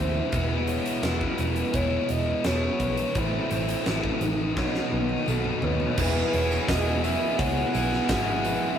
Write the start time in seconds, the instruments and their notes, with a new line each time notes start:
Already playing: picked electric bass D#2, overdriven electric guitar A2 E3 A3 C4 E4
0.00 clean electric guitar C5, soft synth lead E5
0.32 picked electric bass E1, overdriven electric guitar E2 B2 E3 G#3 B3 E4, clean electric guitar B4, kick, closed hi-hat
0.67 clean electric guitar C#5, closed hi-hat
0.86 closed hi-hat
1.02 picked electric bass E1, overdriven electric guitar E3 G#3 B3 E4, clean electric guitar B4, soft synth lead B4, snare, closed hi-hat, tambourine
1.21 kick
1.38 picked electric bass E1, clean electric guitar B4, closed hi-hat
1.56 closed hi-hat
1.73 picked electric bass E1, overdriven electric guitar E3 G#3 B3 E4, clean electric guitar C#5, soft synth lead C#5, kick, closed hi-hat
2.09 picked electric bass E1, clean electric guitar B4, soft synth lead D#5, closed hi-hat
2.44 picked electric bass E1, overdriven electric guitar E3 G#3 B3 E4, clean electric guitar G#4, soft synth lead C#5, snare, closed hi-hat, tambourine
2.80 picked electric bass B1, clean electric guitar B4, kick, closed hi-hat
2.97 closed hi-hat
3.15 picked electric bass A1, overdriven electric guitar A2 E3 A3 C4 E4, soft synth lead C5, clean electric guitar B5, kick, closed hi-hat
3.51 picked electric bass A1, clean electric guitar C5, closed hi-hat
3.69 closed hi-hat
3.86 picked electric bass A1, overdriven electric guitar E3 A3 C4 E4, clean electric guitar B4, snare, closed hi-hat, tambourine
4.04 kick
4.21 picked electric bass A1, soft synth lead D#4, clean electric guitar B4, closed hi-hat
4.56 picked electric bass B1, overdriven electric guitar B2 D#3 F#3 B3 D#4 F#4, clean electric guitar C#5, kick, snare
4.74 snare
4.91 picked electric bass B1, clean electric guitar B4, high tom
5.09 high tom
5.26 picked electric bass B1, overdriven electric guitar D#3 F#3 B3 D#4, clean electric guitar A4, mid tom, tambourine
5.44 mid tom
5.62 picked electric bass D#2, soft synth lead B4, clean electric guitar C#5, floor tom
5.80 floor tom
5.97 picked electric bass E1, overdriven electric guitar E2 B2 E3 G#3 B3 E4 G#4, clean electric guitar B4, soft synth lead B4, kick, crash, tambourine
6.33 picked electric bass E1, overdriven electric guitar B3 E4 G#4, clean electric guitar C#5, open hi-hat, tambourine
6.51 tambourine
6.68 picked electric bass E1, overdriven electric guitar G#3 B3 E4 G#4, clean electric guitar B4, soft synth lead D#5, kick, snare, open hi-hat, tambourine
6.87 tambourine
7.03 overdriven electric guitar E2 B2 E3 G#3 B3 E4 G#4, clean electric guitar B4, soft synth lead E5, open hi-hat, tambourine
7.38 picked electric bass C#2, clean electric guitar C#5, soft synth lead F#5, kick, open hi-hat
7.57 tambourine
7.73 picked electric bass B1, overdriven electric guitar B3 E4 G#4, clean electric guitar B4, open hi-hat, tambourine
7.92 snare, tambourine
8.09 picked electric bass G#1, overdriven electric guitar E2 B2 E3 G#3 B3 E4 G#4, clean electric guitar G#4, kick, snare, open hi-hat, tambourine
8.44 clean electric guitar B4, open hi-hat, tambourine